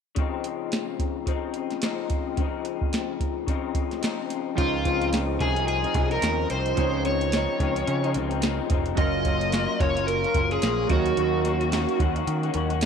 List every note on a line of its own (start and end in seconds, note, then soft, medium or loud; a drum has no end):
0.15 1.25 C#3 medium
0.15 1.27 F3 medium
0.15 1.28 C4 medium
0.15 kick medium
0.15 closed hi-hat medium
0.20 1.29 D#4 medium
0.44 closed hi-hat medium
0.72 snare medium
0.72 closed hi-hat medium
0.99 kick medium
0.99 closed hi-hat medium
1.26 1.80 C#3 soft
1.26 1.82 F3 medium
1.26 1.83 C4 medium
1.26 1.84 D#4 soft
1.26 kick medium
1.26 closed hi-hat medium
1.54 closed hi-hat medium
1.70 snare soft
1.70 closed hi-hat soft
1.81 2.35 C#3 medium
1.81 2.38 F3 medium
1.81 2.39 C4 medium
1.81 2.39 D#4 medium
1.81 snare loud
1.81 closed hi-hat loud
2.10 kick medium
2.10 closed hi-hat medium
2.36 3.45 C#3 medium
2.36 3.48 F3 medium
2.36 3.48 C4 medium
2.36 kick medium
2.36 closed hi-hat medium
2.41 3.49 D#4 medium
2.65 closed hi-hat medium
2.81 kick medium
2.93 snare medium
2.93 closed hi-hat medium
3.20 kick medium
3.20 closed hi-hat medium
3.47 4.01 C#3 medium
3.47 4.03 F3 medium
3.47 4.04 C4 medium
3.47 4.04 D#4 medium
3.47 kick medium
3.47 closed hi-hat medium
3.75 kick medium
3.75 closed hi-hat medium
3.91 snare soft
3.91 closed hi-hat soft
4.02 4.56 C#3 medium
4.02 4.57 F3 medium
4.02 4.58 C4 medium
4.02 4.59 D#4 medium
4.02 snare loud
4.02 closed hi-hat medium
4.30 closed hi-hat medium
4.55 5.36 C#2 medium
4.55 4.83 C#3 medium
4.55 6.72 F3 medium
4.55 4.85 F3 medium
4.55 4.85 C4 medium
4.55 6.73 C#4 medium
4.55 6.74 D#4 medium
4.55 4.86 D#4 medium
4.55 5.09 F4 loud
4.55 kick loud
4.55 closed hi-hat medium
4.60 6.75 C5 medium
4.85 5.11 C#3 medium
4.85 5.11 F3 medium
4.85 5.12 C4 medium
4.85 5.13 D#4 medium
4.85 kick medium
4.85 closed hi-hat medium
5.02 closed hi-hat soft
5.12 5.38 C#3 medium
5.12 5.39 F3 medium
5.12 5.40 C4 medium
5.12 5.41 D#4 medium
5.12 snare loud
5.12 closed hi-hat medium
5.39 5.84 C2 medium
5.39 5.56 C#3 medium
5.39 5.57 F3 medium
5.39 5.56 C4 medium
5.39 5.55 D#4 medium
5.39 5.66 G#4 medium
5.39 kick medium
5.39 closed hi-hat medium
5.56 5.85 F3 soft
5.56 5.83 C4 soft
5.56 5.82 D#4 soft
5.56 closed hi-hat soft
5.68 6.09 G#4 medium
5.68 closed hi-hat medium
5.83 5.94 F3 soft
5.83 5.95 C4 soft
5.83 5.95 D#4 soft
5.83 closed hi-hat soft
5.94 6.17 C2 medium
5.94 6.11 C#3 medium
5.94 6.12 F3 medium
5.94 6.11 C4 soft
5.94 6.09 D#4 medium
5.94 kick medium
5.94 closed hi-hat medium
6.10 6.21 F3 soft
6.10 6.22 C4 soft
6.10 6.22 D#4 soft
6.10 6.50 A#4 medium
6.10 closed hi-hat soft
6.22 6.44 D#2 medium
6.22 6.48 C#3 medium
6.22 6.49 F3 medium
6.22 6.50 C4 medium
6.22 6.51 D#4 medium
6.22 snare loud
6.22 closed hi-hat loud
6.49 6.72 C2 medium
6.49 6.76 C#3 soft
6.49 6.77 F3 medium
6.49 6.77 C4 medium
6.49 6.78 D#4 medium
6.49 7.06 C5 medium
6.49 closed hi-hat medium
6.66 closed hi-hat soft
6.75 7.46 C#2 medium
6.75 7.03 C#3 medium
6.75 8.92 F3 medium
6.75 7.04 F3 medium
6.75 7.05 C4 medium
6.75 8.93 C#4 soft
6.75 8.94 D#4 medium
6.75 kick loud
6.75 closed hi-hat medium
6.79 7.06 D#4 medium
6.79 8.95 C#5 medium
7.04 7.31 C#3 medium
7.04 7.32 F3 medium
7.04 7.32 C4 medium
7.04 7.33 D#4 medium
7.04 8.12 C#5 medium
7.04 closed hi-hat medium
7.21 closed hi-hat soft
7.32 7.58 C#3 medium
7.32 7.59 F3 medium
7.32 7.60 C4 medium
7.32 7.61 D#4 medium
7.32 snare loud
7.32 closed hi-hat medium
7.59 7.82 C#2 medium
7.59 7.76 C#3 medium
7.59 7.77 F3 medium
7.59 7.77 C4 medium
7.59 7.75 D#4 medium
7.59 kick medium
7.59 closed hi-hat medium
7.76 8.05 F3 soft
7.76 8.04 C4 soft
7.76 8.02 D#4 soft
7.76 closed hi-hat soft
7.87 8.16 C#3 medium
7.87 closed hi-hat medium
8.04 8.15 F3 soft
8.04 8.15 C4 soft
8.04 8.15 D#4 medium
8.04 closed hi-hat soft
8.14 8.59 C#2 medium
8.14 8.31 C#3 medium
8.14 8.32 F3 medium
8.14 8.31 C4 medium
8.14 8.29 D#4 medium
8.14 closed hi-hat medium
8.30 8.41 F3 soft
8.30 8.42 C4 medium
8.30 8.42 D#4 medium
8.30 closed hi-hat soft
8.42 8.68 C#3 medium
8.42 8.69 F3 medium
8.42 8.70 C4 medium
8.42 8.71 D#4 medium
8.42 snare loud
8.42 closed hi-hat medium
8.69 8.92 F1 medium
8.69 8.97 C#3 medium
8.69 8.96 F3 medium
8.69 8.97 C4 medium
8.69 8.98 D#4 medium
8.69 kick medium
8.69 closed hi-hat medium
8.86 closed hi-hat soft
8.95 9.65 F#1 medium
8.95 10.85 F#3 medium
8.95 9.23 F#3 medium
8.95 9.24 A#3 medium
8.95 10.86 C#4 medium
8.95 9.25 C#4 medium
8.95 10.86 F4 medium
8.95 9.26 F4 medium
8.95 9.83 D#5 loud
8.95 kick loud
8.95 closed hi-hat medium
9.00 10.87 A#4 medium
9.24 9.51 F#3 medium
9.24 9.52 A#3 medium
9.24 9.53 C#4 medium
9.24 9.53 F4 medium
9.24 kick medium
9.24 closed hi-hat medium
9.41 closed hi-hat soft
9.52 9.78 F#3 medium
9.52 9.80 A#3 medium
9.52 9.80 C#4 medium
9.52 9.81 F4 medium
9.52 snare loud
9.52 closed hi-hat medium
9.80 10.24 F#1 medium
9.80 9.96 F#3 medium
9.80 9.97 A#3 medium
9.80 9.97 C#4 medium
9.80 9.96 F4 medium
9.80 10.08 C#5 medium
9.80 kick medium
9.80 closed hi-hat medium
9.97 10.26 A#3 soft
9.97 10.25 C#4 soft
9.97 10.23 F4 soft
9.97 closed hi-hat soft
10.07 10.52 A#4 medium
10.07 closed hi-hat medium
10.24 10.34 A#3 soft
10.24 10.35 C#4 soft
10.24 10.35 F4 soft
10.24 closed hi-hat soft
10.34 10.57 F#1 medium
10.34 10.51 F#3 medium
10.34 10.52 A#3 medium
10.34 10.51 C#4 medium
10.34 10.50 F4 medium
10.34 kick medium
10.34 closed hi-hat medium
10.51 10.62 A#3 soft
10.51 10.63 C#4 soft
10.51 10.62 F4 medium
10.51 10.90 G#4 medium
10.51 closed hi-hat soft
10.62 10.85 A#1 medium
10.62 10.89 F#3 medium
10.62 10.89 A#3 medium
10.62 10.91 C#4 medium
10.62 10.91 F4 medium
10.62 snare loud
10.62 closed hi-hat loud
10.87 11.12 D#2 medium
10.87 11.16 D#3 medium
10.87 12.86 F#3 medium
10.87 11.17 A#3 medium
10.87 12.86 C#4 medium
10.87 12.86 D#4 medium
10.87 11.96 F#4 medium
10.87 kick loud
10.87 closed hi-hat medium
10.92 11.17 C#4 medium
10.92 11.18 F#4 medium
10.92 12.86 A#4 medium
11.06 closed hi-hat medium
11.17 11.85 D#2 medium
11.17 11.43 D#3 medium
11.17 11.44 A#3 medium
11.17 11.45 C#4 medium
11.17 11.46 F#4 medium
11.17 closed hi-hat medium
11.44 11.71 D#3 medium
11.44 11.71 A#3 medium
11.44 11.72 C#4 medium
11.44 11.73 F#4 medium
11.44 closed hi-hat medium
11.61 closed hi-hat soft
11.72 11.98 D#3 medium
11.72 11.99 A#3 medium
11.72 12.00 C#4 medium
11.72 12.01 F#4 medium
11.72 snare loud
11.72 closed hi-hat medium
11.89 closed hi-hat soft
11.99 12.22 D#2 medium
11.99 12.16 D#3 medium
11.99 12.17 A#3 medium
11.99 12.17 C#4 medium
11.99 12.15 F#4 medium
11.99 kick medium
11.99 closed hi-hat medium
12.16 12.45 A#3 soft
12.16 12.44 C#4 soft
12.16 12.42 F#4 medium
12.16 closed hi-hat soft
12.27 12.49 D#3 medium
12.27 closed hi-hat medium
12.43 12.54 A#3 soft
12.43 12.55 C#4 soft
12.43 12.55 F#4 medium
12.43 closed hi-hat soft
12.54 12.86 D#2 medium
12.54 12.71 D#3 medium
12.54 12.71 A#3 medium
12.54 12.71 C#4 medium
12.54 12.70 F#4 medium
12.54 closed hi-hat medium
12.70 12.81 A#3 soft
12.70 12.82 C#4 soft
12.70 12.82 F#4 medium
12.70 closed hi-hat soft
12.81 12.86 D#3 medium
12.81 12.86 A#3 medium
12.81 closed hi-hat medium